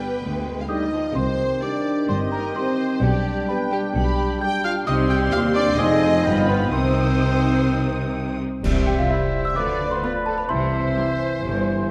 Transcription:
Already playing: G3 B3 B4 G5 B5
0.21 D2 G#3
0.62 F5
0.68 D3 G3 D#4 G4 D#5 G5 D#6
0.92 F3
1.15 C2 C3 D#3 C4 G4 C5 G5 C6
1.62 G3 D4 G4 D5 D6
2.08 G1 G2 C4 C5 D#5 C6
2.32 A#3 A#4 A#5
2.55 G3 C4 G4 C5 C6
3.02 B1 B2 G3 D4 G4 D5 G5
3.48 G3 B3 G4 B4 G5 B5
3.71 G3 G4 G5
3.95 B1 B2 G3 G4 G5 B5
4.41 G3 G4 G5 G6
4.63 F4 F5 F6
4.86 C2 C3 G3 C4 D#4 G4 D#5 G5 C6 D#6
5.09 G4 G5 G6
5.32 D#2 F4 F5 F6
5.55 D4 D5 D6
5.78 F1 F2 F3 C4 D#4 G#4 D#5 G#5 D#6
6.25 G1 G2 F3 B3 F4 G5 B5
6.48 B3 B4 B5
6.72 C2 C3 D#3 C4 D#4 C5 G5 C6 D#6
8.64 C2 C3 G3 C5 E5, concert bass drum, crash
8.87 G4 G5
8.99 F4 F5
9.10 C4 E4 G4 E5
9.45 E5 E6
9.56 D2 D3 F3 B4 D5 D6
9.91 C5 C6
10.03 B3 F4 B4 D5 B5
10.26 A4 A5
10.38 B4 B5
10.49 C2 C3 E3 C5 E5 C6
10.96 G3 C4 E4
11.42 G1 G2 C5

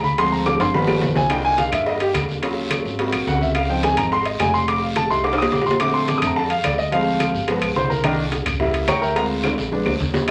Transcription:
Already playing: D2
0.04 B5, high conga, short guiro
0.18 F3 G#3 C4 C6, high bongo, high timbale, long guiro
0.32 A#5, high conga
0.46 D6, high bongo, high conga, high timbale, short guiro, claves
0.60 G1 C6, high bongo, high timbale, short guiro
0.74 D#3 F3 B3 B5, high bongo, low timbale, long guiro
0.87 high bongo, low timbale, claves
0.98 high bongo, low timbale
1.02 C2, high conga, short guiro
1.15 G#5, low bongo, high conga, low timbale, short guiro
1.30 A#3 D4 D#4 F4 G5, high bongo, high timbale, long guiro, claves
1.44 G#5, high conga
1.58 F5, high bongo, high conga, high timbale, short guiro
1.72 G2 E5, low conga, high timbale, short guiro, claves
1.86 D#5, high bongo, high conga, long guiro
2.00 G4, high conga, high timbale
2.14 D#2, high bongo, low bongo, high conga, high timbale, short guiro, claves
2.28 high conga, short guiro
2.42 F#3 C#4 F4, high bongo, high timbale, long guiro
2.57 high conga
2.71 high bongo, high conga, high timbale, short guiro, claves
2.85 G#1, high bongo, high conga, short guiro
2.99 A#3 C4 F#4, high bongo, high conga, high timbale, long guiro
3.12 A#1, high bongo, high conga, high timbale, claves
3.27 C#2 F#5, high bongo, low bongo, high conga, short guiro
3.41 E5, high bongo, high conga, short guiro
3.51 E5, high timbale, claves
3.55 F5, high bongo, high conga, long guiro
3.69 F3 C4 D#4 G5, high conga
3.83 G#5, high bongo, high conga, high timbale, short guiro
3.97 G#1 A#5, low conga, high timbale, short guiro, claves
4.12 C6, high bongo, high conga, long guiro
4.25 D#5, high conga, high timbale
4.39 F1 G#5, high bongo, low bongo, high conga, high timbale, low timbale, short guiro, claves
4.54 C6, short guiro
4.68 D6, high bongo, high conga, high timbale, long guiro
4.82 F5, high conga
4.96 A5, high bongo, high conga, high timbale, short guiro, claves
5.10 C2 G3 A3 D#4 C6, high bongo, short guiro
5.24 D6, high bongo, high conga, high timbale, long guiro
5.33 high timbale
5.38 D#6, high bongo, high conga, claves
5.42 low timbale
5.52 A#1 D6, high bongo, low bongo, high conga, low timbale, short guiro
5.62 low timbale
5.66 C6, high bongo, high conga, short guiro
5.71 low timbale
5.80 D3 A3 C4 D6, high bongo, high conga, high timbale, long guiro, claves
5.94 C6, high conga
6.08 D6, high bongo, high conga, high timbale, short guiro
6.18 D3 D#6
6.22 F2 A3 C4, low conga, high timbale, short guiro, claves
6.27 A#5
6.36 A5, high bongo, high conga, long guiro
6.50 F5, high conga, high timbale
6.64 D2 D5, high bongo, low bongo, high conga, high timbale, short guiro, claves
6.78 D#5, short guiro
6.92 F3 G#3 C4 F5, high bongo, high conga, high timbale, long guiro
7.06 high conga
7.20 high bongo, high conga, high timbale, short guiro, claves
7.34 G1, high bongo, high conga, short guiro
7.47 F3 G#3 B3, high bongo, high conga, high timbale, long guiro
7.62 B1, high bongo, high conga, high timbale, claves
7.76 C2 C5 C6, high bongo, low bongo, high conga, short guiro
7.90 A#4 A#5, high bongo, high conga, short guiro
8.03 D#3 A#3 D4 A#4 D#5 G5 A#5, high bongo, high conga, high timbale, long guiro, claves
8.32 high bongo, high conga, high timbale, short guiro
8.46 C#2, low conga, high timbale, short guiro, claves
8.59 G3 A#3 E4, high bongo, high conga, low conga, long guiro
8.74 high conga, high timbale
8.88 D2 C#5 G5 A#5 C#6, high bongo, low bongo, high conga, high timbale, short guiro, claves
9.02 A#4 E5 G5 A#5, short guiro
9.15 G#3 C4 F4 A#4 A#5, high bongo, high conga, high timbale, long guiro
9.30 high conga
9.44 high bongo, high conga, high timbale, short guiro, claves
9.58 A#1, high bongo, high conga, short guiro
9.72 G#3 B3 D4, low bongo, high conga, long guiro
9.86 D2, low bongo, high conga, low timbale, claves
10.00 D#2, low bongo, high conga, short guiro
10.14 low bongo, high conga, low timbale, short guiro
10.28 claves

